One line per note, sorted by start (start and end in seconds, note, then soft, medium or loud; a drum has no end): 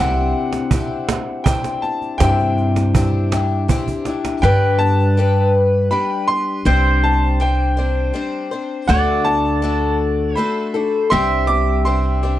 0.00 0.32 C2 medium
0.00 0.71 C3 medium
0.00 0.70 C4 medium
0.00 0.73 D4 medium
0.00 0.71 E4 medium
0.00 0.73 G4 medium
0.00 1.41 F#5 medium
0.53 cajon slap medium
0.71 1.45 C4 medium
0.71 1.47 D4 medium
0.71 1.45 E4 medium
0.71 1.48 G4 medium
0.71 cajon bass medium
1.09 cajon slap medium
1.44 2.19 C4 medium
1.44 2.21 D4 medium
1.44 2.20 E4 medium
1.44 1.83 G5 medium
1.44 cajon bass loud
1.48 2.21 G4 medium
1.64 cajon slap medium
1.82 2.21 A5 medium
1.82 cajon slap soft
2.02 cajon slap soft
2.18 3.65 G2 medium
2.18 2.95 C3 medium
2.18 2.93 C4 medium
2.18 2.95 D4 medium
2.18 2.94 E4 medium
2.18 2.95 G4 medium
2.18 3.64 G5 medium
2.18 cajon bass medium
2.18 cajon slap medium
2.39 cajon slap soft
2.58 cajon slap soft
2.76 cajon slap medium
2.94 3.32 C4 medium
2.94 3.32 D4 medium
2.94 3.32 E4 medium
2.94 3.31 G4 medium
2.94 cajon bass medium
3.32 3.69 D4 soft
3.32 3.68 E4 soft
3.32 3.69 G4 medium
3.32 cajon slap medium
3.68 4.06 C4 medium
3.68 4.06 D4 medium
3.68 4.06 E4 medium
3.68 4.05 G4 medium
3.68 cajon bass medium
3.88 cajon bass soft
4.05 4.43 D4 soft
4.05 4.44 E4 soft
4.05 4.43 G4 soft
4.05 cajon slap medium
4.25 cajon slap medium
4.42 5.88 G2 loud
4.42 5.17 G2 medium
4.42 5.17 D3 medium
4.42 5.17 G3 medium
4.42 5.18 D4 medium
4.42 5.18 G4 medium
4.42 6.73 B4 medium
4.42 5.18 B4 medium
4.42 4.77 G5 loud
4.79 5.50 A5 loud
5.17 5.90 G3 medium
5.17 5.92 D4 medium
5.17 5.91 G4 medium
5.17 5.93 B4 medium
5.91 6.65 G3 medium
5.91 6.66 D4 medium
5.91 6.66 G4 medium
5.91 6.26 B5 medium
6.28 7.05 C6 loud
6.65 8.10 C2 medium
6.65 7.40 C3 medium
6.65 7.39 G3 medium
6.65 7.40 C4 medium
6.65 7.41 D4 medium
6.65 8.89 C5 medium
6.65 7.41 C5 medium
7.04 7.42 A5 medium
7.40 7.77 G3 medium
7.40 7.78 C4 medium
7.40 7.77 D4 medium
7.40 7.76 C5 medium
7.40 8.11 G5 medium
7.77 8.13 C4 soft
7.77 8.14 D4 medium
7.77 8.14 C5 medium
8.14 8.51 G3 medium
8.14 8.52 C4 medium
8.14 8.52 D4 medium
8.14 8.50 C5 medium
8.51 8.89 C4 soft
8.51 8.88 D4 soft
8.51 8.89 C5 soft
8.88 10.33 D2 loud
8.88 9.63 D3 medium
8.88 9.61 A3 medium
8.88 9.63 D4 medium
8.88 9.62 F#4 loud
8.88 9.63 A4 medium
8.88 10.38 D5 loud
8.88 9.26 F#5 loud
9.25 9.95 A5 loud
9.62 10.36 A3 medium
9.62 10.37 D4 medium
9.62 10.37 F#4 medium
9.62 10.38 A4 medium
10.36 10.74 A3 medium
10.36 10.75 D4 medium
10.36 10.74 F#4 medium
10.36 10.73 A4 medium
10.36 11.19 C5 loud
10.36 11.07 B5 medium
10.74 11.11 D4 soft
10.74 11.12 F#4 soft
10.74 11.11 A4 medium
11.10 12.39 C2 loud
11.10 11.86 C3 medium
11.10 11.85 G3 medium
11.10 11.85 C4 medium
11.10 11.86 D4 medium
11.10 11.87 G4 medium
11.10 12.39 E5 loud
11.10 11.49 C6 loud
11.47 11.82 D6 loud
11.85 12.23 G3 medium
11.85 12.23 C4 medium
11.85 12.22 D4 medium
11.85 12.22 G4 medium
11.85 12.39 C6 medium
12.23 12.39 C4 soft
12.23 12.39 D4 soft
12.23 12.39 G4 medium